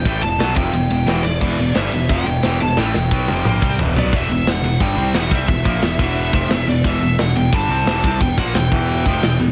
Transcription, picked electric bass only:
X:1
M:4/4
L:1/8
Q:1/4=177
K:Em
V:1 name="Picked electric bass" clef=bass
A,,, E,,, B,,, =F,,, E,,, E,,, E,,, E,,, | E,,, E,,, G,,, E,,, =F,,, E,,, E,,, E,,, | A,,, E,,, B,,, =F,,, ^A,,, C,, E,,, B,,, | E,,, E,,, E,,, E,,, G,,, C,, E,,, C,, |
E,,, ^A,,, E,,, E,,,2 =F,,, E,,, E,,, | E,,, E,,, E,,, E,,, G,,, C,, E,,, C,, | E,,, ^A,,, E,,, E,,,2 =F,,, E,,, E,,, |]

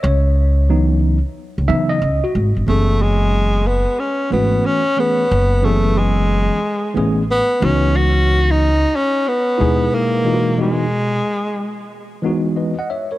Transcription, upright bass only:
X:1
M:4/4
L:1/16
Q:"Swing 16ths" 1/4=91
K:F#m
V:1 name="Upright bass" clef=bass
C,,6- C,, z2 C,, C,2 C,, z G,,, =G,,, | F,,,6- F,,, z3 G,,,2 z4 | F,,,6- F,,, z3 A,,,3 z C,,2- | C,,6- C,, z3 ^D,,2 z4 |
z16 |]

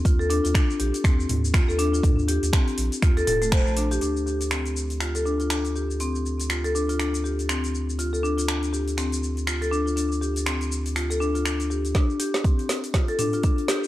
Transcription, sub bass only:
X:1
M:4/4
L:1/16
Q:"Swing 16ths" 1/4=121
K:Dphr
V:1 name="Sub bass" clef=bass
E,,3 E,, z2 B,,, z E,,2 E,,3 E,,3 | E,,3 E,, z2 B,,, z E,,2 E,,,3 B,,,3 | D,,16- | D,,16- |
D,,16- | D,,16 | D,,3 D,, z2 A,,, z6 D,,3 |]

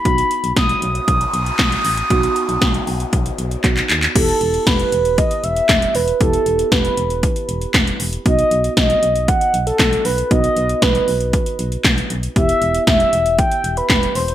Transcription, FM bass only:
X:1
M:4/4
L:1/16
Q:1/4=117
K:Em
V:1 name="FM bass" clef=bass
B,,,2 z B,,, B,,,2 B,,,2 B,,,2 B,,,2 B,,,2 A,,,2 | B,,,2 z B,,, B,,,2 B,,,2 B,,,2 B,,,2 B,,,2 ^D,,2 | E,,,2 E,,,2 E,,,2 E,,,3 z E,,,2 E,,,2 E,,,2 | E,,,2 E,,,2 E,,,2 E,,,3 z E,,,2 E,,,2 E,,,2 |
B,,,2 B,,,2 B,,,2 B,,,3 z B,,,2 B,,,2 B,,,2 | B,,,2 B,,,2 B,,,2 B,,,3 z B,,,2 B,,,2 B,,,2 | E,,,2 E,,,2 E,,,2 E,,,3 z E,,,2 E,,,2 E,,,2 |]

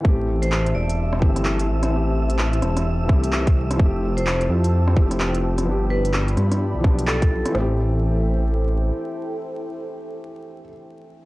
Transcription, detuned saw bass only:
X:1
M:4/4
L:1/16
Q:"Swing 16ths" 1/4=128
K:Am
V:1 name="Detuned saw bass" clef=bass
A,,,6 E,,,4 G,,,4 A,,,2- | A,,,6 E,,,4 C,,6 | F,,,6 F,,4 F,,,6 | G,,,6 G,,3 B,,,6 z |
A,,,12 z4 | z16 |]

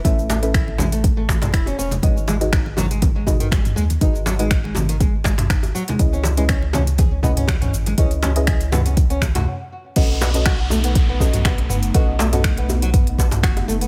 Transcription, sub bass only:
X:1
M:4/4
L:1/8
Q:"Swing 16ths" 1/4=121
K:Bmix
V:1 name="Sub bass" clef=bass
A,,,6 E,,, E,,, | G,,,6- G,,, D,, | G,,,6- G,,, z | C,,6- C,, G,,, |
C,,6 z2 | B,,,6- B,,, F,,, | B,,,6 F,,, F,,, |]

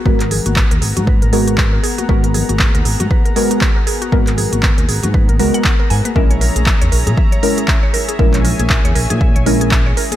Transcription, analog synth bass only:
X:1
M:4/4
L:1/16
Q:"Swing 16ths" 1/4=118
K:G#m
V:1 name="Analog synth bass" clef=bass
G,,,3 G,,,2 D,, G,,, G,,2 G,,,4- G,,, z2 | G,,,3 G,,,2 D,, G,,, G,, z8 | G,,,3 G,,,2 D,, G,,, G,,2 G,,, C,, z3 G,, z | A,,,3 A,,,2 E,, A,,, A,, z8 |
A,,,3 A,,,2 E,, A,,, A,,2 A,,,4- A,,, z2 |]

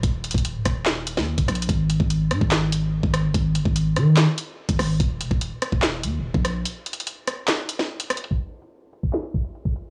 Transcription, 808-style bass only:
X:1
M:4/4
L:1/16
Q:1/4=145
K:D#phr
V:1 name="808-style bass" clef=bass
D,,,3 D,,,2 C,,, D,,,4- D,,, D,,2 C,,, A,,,2 | G,,,3 G,,,3 G,, G,,,6 G,,,2 =G,,, | G,,,2 =G,,, ^G,,,3 D,3 z4 G,,, G,,,2 | D,,,2 E,,, D,,,2 z2 D,,,3 D,,3/2 D,,,3/2 A,,,3 |
z16 | z16 |]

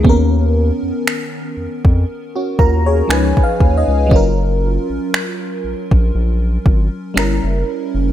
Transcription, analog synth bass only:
X:1
M:4/4
L:1/16
Q:"Swing 16ths" 1/4=59
K:F#
V:1 name="Analog synth bass" clef=bass
D,,3 E,, z2 E,, E,, z2 D,,2 C,, z D,, C,, | F,,,3 A,,, z2 A,,, A,,, A,,,2 G,,, z =G,,, F,,, z F,,, |]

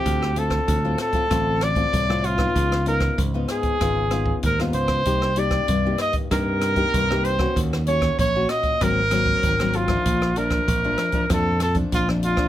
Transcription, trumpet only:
X:1
M:4/4
L:1/8
Q:1/4=96
K:Bb
V:1 name="Trumpet"
G A2 A2 d2 F- | F B z _A3 B c- | c d2 e B3 c | z _d d e B3 F- |
F B3 A A F F |]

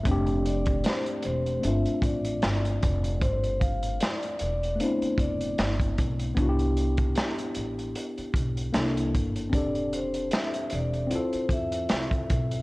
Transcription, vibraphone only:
X:1
M:4/4
L:1/16
Q:"Swing 16ths" 1/4=76
K:C
V:1 name="Vibraphone"
z2 d2 c d c2 e2 d6 | c2 f2 d2 d2 c2 d3 z3 | z16 | d2 c2 e2 d2 c2 e6 |]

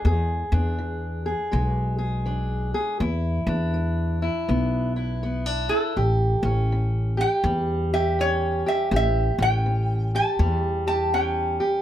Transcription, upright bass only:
X:1
M:4/4
L:1/8
Q:"Swing" 1/4=81
K:A
V:1 name="Upright bass" clef=bass
E,, E,,3 B,,,4 | E,, E,,3 B,,,4 | A,,, A,,,3 E,,4 | A,,, A,,,3 E,,4 |]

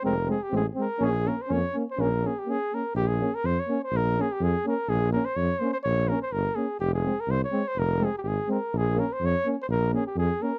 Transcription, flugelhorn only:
X:1
M:2/4
L:1/16
Q:"Swing 16ths" 1/4=125
K:Bbm
V:1 name="Flugelhorn"
B2 A =G A2 B2 | A2 B c d2 z c | B2 A =G A2 B2 | =G A2 B c d2 c |
B2 A =G A2 B2 | A2 B c d2 c c | d2 B c B2 A2 | =G A2 B c d2 c |
B2 A =G/2 G/2 A2 B2 | A2 B c d2 z c | B2 A =G A2 B2 |]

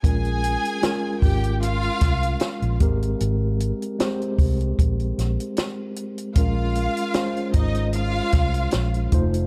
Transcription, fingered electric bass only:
X:1
M:4/4
L:1/16
Q:"Swing 16ths" 1/4=76
K:Bbdor
V:1 name="Fingered electric bass" clef=bass
B,,,3 z3 A,,,4 C,,2 z B,,, A,,,2 | A,,,3 z3 C,,2 B,,,2 B,,, z4 z | B,,,3 z3 A,,,4 C,,2 B,,,2 F,,,2 |]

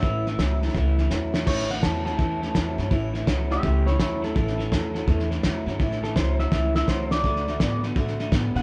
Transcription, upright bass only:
X:1
M:4/4
L:1/8
Q:"Swing" 1/4=166
K:A
V:1 name="Upright bass" clef=bass
A,,,2 C,,2 C,,2 E,,2 | A,,,2 E,,2 E,,2 E,, =G,, | A,,,2 C,,2 C,,2 z2 | A,,,2 E,,2 E,,2 E,, =G,, |
A,,,2 C,,2 C,,2 C,,2 | D,,2 A,,2 A,,2 A,, B,, |]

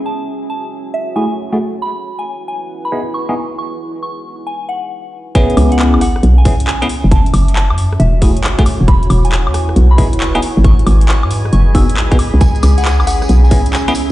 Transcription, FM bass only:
X:1
M:4/4
L:1/16
Q:"Swing 16ths" 1/4=136
K:C#m
V:1 name="FM bass" clef=bass
z16 | z16 | z16 | z2 C,,3 G,,,3 B,,,3 C,,3 z F,,,- |
F,,,2 F,,,3 F,,3 E,,,3 F,,,3 z E,,,- | E,,,2 E,,,3 E,,3 B,,,3 E,,,3 z G,,,- | G,,,2 G,,,3 G,,3 F,,,3 G,,,3 z C,,- | C,,2 C,,3 G,,,3 B,,,3 C,,3 z2 |]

